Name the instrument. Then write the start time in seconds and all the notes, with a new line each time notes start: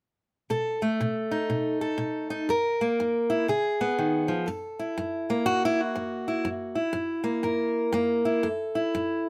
steel-string acoustic guitar
0.50 B2 A4
0.82 A3
1.01 B2
1.31 D#4
1.50 B2
1.81 A4
1.98 B2
2.30 D#4
2.49 F#2 A#4
2.81 A#3
3.00 F#2
3.30 E4
3.48 C#3 G#4
3.81 B3
3.98 D#3
4.28 F3
4.47 F#2 A4
4.79 E4
4.98 F#2
5.30 A#3
5.46 F#2 F#4
5.65 E4
5.80 F#4
5.95 F#2
6.28 E4
6.45 F#2
6.75 E4
6.93 F#2
7.24 A#3
7.43 F#2 A#4
7.92 F#2 A#3
8.25 E4
8.43 F#2 A4
8.75 E4
8.95 F#2